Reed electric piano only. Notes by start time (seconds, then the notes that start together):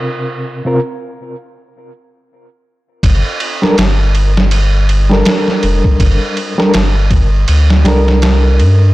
Already playing: C3 C4 F4 A#4
0.65 C3 C4 F4 A#4
3.62 G3 D4 A4 A#4
5.09 G3 D4 A4 A#4
6.58 G3 D4 A4 A#4
7.85 G3 D4 A4 A#4